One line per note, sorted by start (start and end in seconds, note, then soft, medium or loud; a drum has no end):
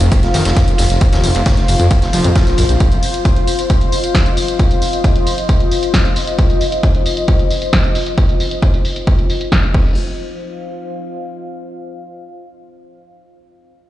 0.00 0.08 F1 medium
0.00 0.10 F2 loud
0.00 9.73 F4 medium
0.00 9.74 C5 medium
0.00 3.22 F5 medium
0.00 closed hi-hat medium
0.00 tambourine soft
0.12 kick loud
0.12 closed hi-hat medium
0.12 ride medium
0.12 tambourine soft
0.23 0.30 F1 medium
0.23 snare soft
0.23 closed hi-hat medium
0.34 0.41 F1 loud
0.34 0.43 D#3 medium
0.34 snare loud
0.34 open hi-hat loud
0.34 ride medium
0.34 tambourine medium
0.45 0.52 F1 medium
0.45 snare loud
0.45 closed hi-hat medium
0.45 ride medium
0.45 tambourine soft
0.56 0.63 F#2 loud
0.56 kick loud
0.56 snare loud
0.56 closed hi-hat medium
0.56 ride medium
0.56 tambourine soft
0.68 0.75 F1 medium
0.68 closed hi-hat medium
0.68 tambourine soft
0.78 0.86 F1 medium
0.78 0.85 F2 medium
0.78 snare loud
0.78 open hi-hat loud
0.78 ride medium
0.78 tambourine medium
0.90 0.97 F1 medium
0.90 snare soft
0.90 closed hi-hat medium
0.90 tambourine soft
1.01 1.05 F2 loud
1.01 kick loud
1.01 closed hi-hat medium
1.01 ride medium
1.01 tambourine soft
1.12 1.20 F1 medium
1.12 1.25 D#2 loud
1.12 snare loud
1.12 closed hi-hat medium
1.12 ride medium
1.12 tambourine soft
1.24 1.31 F1 loud
1.24 1.30 F2 loud
1.24 snare soft
1.24 open hi-hat loud
1.24 tambourine medium
1.35 1.42 F1 medium
1.35 1.41 C3 medium
1.35 closed hi-hat medium
1.35 ride medium
1.35 tambourine soft
1.46 1.55 F2 medium
1.46 kick loud
1.46 snare loud
1.46 closed hi-hat medium
1.46 ride medium
1.46 tambourine soft
1.56 1.64 F1 medium
1.56 snare soft
1.56 closed hi-hat soft
1.68 1.76 F1 loud
1.68 1.75 F2 medium
1.68 open hi-hat loud
1.68 ride medium
1.68 tambourine medium
1.80 1.89 F2 loud
1.80 1.87 F2 medium
1.80 closed hi-hat medium
1.80 tambourine soft
1.91 kick loud
1.91 closed hi-hat medium
1.91 ride medium
1.91 tambourine soft
2.02 2.09 F1 medium
2.02 snare medium
2.02 closed hi-hat medium
2.02 tambourine soft
2.13 2.20 F1 loud
2.13 2.26 F3 loud
2.13 open hi-hat loud
2.13 ride medium
2.13 tambourine medium
2.24 2.31 F2 medium
2.24 closed hi-hat medium
2.24 ride soft
2.24 tambourine soft
2.35 2.45 F3 medium
2.35 kick loud
2.35 snare loud
2.35 closed hi-hat medium
2.35 ride medium
2.35 tambourine soft
2.46 2.54 A#1 medium
2.46 snare medium
2.46 closed hi-hat medium
2.46 tambourine soft
2.58 2.65 A#1 loud
2.58 2.64 F#2 medium
2.58 open hi-hat loud
2.58 ride medium
2.58 tambourine medium
2.69 2.76 A#1 medium
2.69 closed hi-hat medium
2.69 tambourine soft
2.80 kick loud
2.80 closed hi-hat medium
2.80 tambourine soft
2.92 closed hi-hat soft
2.92 tambourine soft
3.03 open hi-hat loud
3.03 tambourine medium
3.09 9.74 D#5 medium
3.14 closed hi-hat soft
3.14 tambourine soft
3.25 kick loud
3.25 closed hi-hat medium
3.25 tambourine soft
3.36 closed hi-hat soft
3.48 open hi-hat loud
3.48 tambourine medium
3.59 closed hi-hat medium
3.59 tambourine soft
3.70 kick loud
3.70 closed hi-hat medium
3.70 tambourine soft
3.81 closed hi-hat medium
3.92 open hi-hat loud
3.92 tambourine medium
4.04 closed hi-hat medium
4.04 tambourine soft
4.15 kick loud
4.15 snare loud
4.15 closed hi-hat medium
4.15 tambourine soft
4.26 closed hi-hat soft
4.26 tambourine soft
4.37 open hi-hat loud
4.37 tambourine medium
4.48 closed hi-hat soft
4.48 tambourine soft
4.59 kick loud
4.59 closed hi-hat medium
4.59 tambourine soft
4.71 closed hi-hat soft
4.71 tambourine soft
4.82 open hi-hat loud
4.82 tambourine medium
4.93 closed hi-hat soft
4.93 tambourine soft
5.04 kick loud
5.04 closed hi-hat medium
5.04 tambourine soft
5.16 closed hi-hat soft
5.27 open hi-hat loud
5.27 tambourine medium
5.38 closed hi-hat medium
5.38 tambourine soft
5.49 kick loud
5.49 closed hi-hat medium
5.49 tambourine soft
5.60 closed hi-hat medium
5.71 open hi-hat loud
5.71 tambourine medium
5.83 closed hi-hat medium
5.83 tambourine soft
5.94 kick loud
5.94 snare loud
5.94 closed hi-hat medium
5.94 tambourine soft
6.05 closed hi-hat soft
6.05 tambourine soft
6.16 open hi-hat loud
6.16 tambourine medium
6.27 closed hi-hat soft
6.27 tambourine soft
6.39 kick loud
6.39 closed hi-hat medium
6.39 tambourine soft
6.50 closed hi-hat medium
6.50 tambourine soft
6.61 open hi-hat loud
6.61 tambourine medium
6.72 closed hi-hat medium
6.72 tambourine soft
6.83 kick loud
6.83 closed hi-hat medium
6.83 tambourine soft
6.95 closed hi-hat medium
7.06 open hi-hat loud
7.06 tambourine medium
7.17 closed hi-hat medium
7.17 tambourine soft
7.28 kick loud
7.28 closed hi-hat medium
7.28 tambourine soft
7.39 closed hi-hat medium
7.50 open hi-hat loud
7.50 tambourine medium
7.62 closed hi-hat medium
7.62 tambourine soft
7.73 kick loud
7.73 snare loud
7.73 closed hi-hat medium
7.73 tambourine soft
7.84 closed hi-hat medium
7.84 tambourine soft
7.95 open hi-hat loud
7.95 tambourine medium
8.06 closed hi-hat medium
8.06 tambourine soft
8.18 kick loud
8.18 closed hi-hat medium
8.18 tambourine soft
8.29 closed hi-hat medium
8.29 tambourine soft
8.40 open hi-hat loud
8.40 tambourine medium
8.51 closed hi-hat medium
8.51 tambourine soft
8.62 kick loud
8.62 closed hi-hat medium
8.62 tambourine soft
8.74 closed hi-hat medium
8.74 tambourine soft
8.85 open hi-hat loud
8.85 tambourine medium
8.96 closed hi-hat medium
8.96 tambourine soft
9.07 kick loud
9.07 closed hi-hat medium
9.07 tambourine soft
9.19 closed hi-hat medium
9.30 open hi-hat loud
9.30 tambourine medium
9.41 closed hi-hat medium
9.41 tambourine soft
9.52 kick loud
9.52 snare loud
9.52 closed hi-hat medium
9.52 tambourine soft
9.63 closed hi-hat medium
9.63 tambourine soft
9.74 9.95 F1 medium
9.74 11.49 F4 medium
9.74 kick loud
9.74 crash medium
9.81 11.49 C5 medium
10.10 11.72 F5 medium